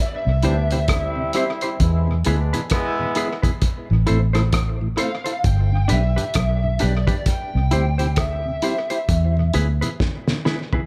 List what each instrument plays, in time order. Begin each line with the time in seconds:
0.08 lead electric guitar D5
0.16 lead electric guitar E5
0.25 fingered electric bass C2, tonewheel organ C3
0.43 fingered electric bass D2, tonewheel organ G3 C4 E4, trombone section G3 B3 D4, clean electric guitar E4 G4 C5, closed hi-hat
0.71 tonewheel organ C3, clean electric guitar E4 G4 C5, closed hi-hat
0.88 trombone section G3 C4 E4, kick, cross-stick, closed hi-hat
1.16 tonewheel organ C3
1.33 tonewheel organ G3 C4 E4, clean electric guitar E4 G4 C5, closed hi-hat
1.61 clean electric guitar E4 G4 C5, closed hi-hat
1.80 fingered electric bass E2, trombone section G#3 B3 E4, kick, closed hi-hat
2.07 tonewheel organ E2 B2
2.25 fingered electric bass D2, tonewheel organ G#3 B3 E4, trombone section G#3 B3 D4, clean electric guitar E4 G#4 B4, closed hi-hat
2.53 tonewheel organ E2 B2, clean electric guitar E4 G#4 B4, closed hi-hat
2.70 trombone section G#3 B3 E4, kick, cross-stick, closed hi-hat
2.99 tonewheel organ E2 B2
3.15 tonewheel organ G#3 B3 E4, clean electric guitar E4 G#4 B4, closed hi-hat
3.42 tonewheel organ E2 B2, clean electric guitar E4 G#4 B4, kick, closed hi-hat
3.62 kick, closed hi-hat
3.90 fingered electric bass A1, tonewheel organ A2 E3
4.07 fingered electric bass A1, tonewheel organ A3 C4 E4, clean electric guitar E4 A4 C5, closed hi-hat
4.33 tonewheel organ A2 E3, clean electric guitar E4 A4 C5, cross-stick, closed hi-hat
4.53 kick, cross-stick, closed hi-hat
4.81 tonewheel organ A2 E3
4.97 tonewheel organ A3 C4 E4, clean electric guitar E4 A4 C5, lead electric guitar F5, closed hi-hat
5.24 clean electric guitar E4 A4 C5, closed hi-hat
5.44 fingered electric bass G1, lead electric guitar G5, kick, closed hi-hat
5.72 tonewheel organ G2 D3
5.88 fingered electric bass B1, tonewheel organ G3 B3 D4, clean electric guitar D4 G4 B4, lead electric guitar E5, closed hi-hat
6.16 tonewheel organ G2 D3, clean electric guitar D4 G4 B4, closed hi-hat
6.34 fingered electric bass B1, kick, cross-stick, closed hi-hat
6.63 tonewheel organ G2 D3
6.79 fingered electric bass B1, tonewheel organ G3 B3 D4, clean electric guitar D4 G4 B4, lead electric guitar D5, closed hi-hat
7.07 tonewheel organ G2 D3, clean electric guitar D4 G4 B4, kick, closed hi-hat
7.26 lead electric guitar G5, kick, closed hi-hat
7.54 fingered electric bass C2, tonewheel organ C3
7.71 fingered electric bass D2, tonewheel organ G3 C4 E4, clean electric guitar E4 G4 C5, closed hi-hat
7.98 tonewheel organ C3, clean electric guitar E4 G4 C5, closed hi-hat
8.16 lead electric guitar E5, kick, cross-stick, closed hi-hat
8.45 tonewheel organ C3
8.62 tonewheel organ G3 C4 E4, clean electric guitar E4 G4 C5, closed hi-hat
8.90 clean electric guitar E4 G4 C5, closed hi-hat
9.09 fingered electric bass E2, kick, closed hi-hat
9.37 tonewheel organ E2 B2
9.54 fingered electric bass D2, tonewheel organ G#3 B3 E4, clean electric guitar E4 G#4 B4, closed hi-hat
9.81 tonewheel organ E2 B2, clean electric guitar E4 G#4 B4, closed hi-hat
10.00 kick, snare
10.27 tonewheel organ E2 B2, snare
10.45 tonewheel organ G#3 B3 E4, clean electric guitar E4 G#4 B4, snare
10.73 tonewheel organ E2 B2, clean electric guitar E4 G#4 B4, floor tom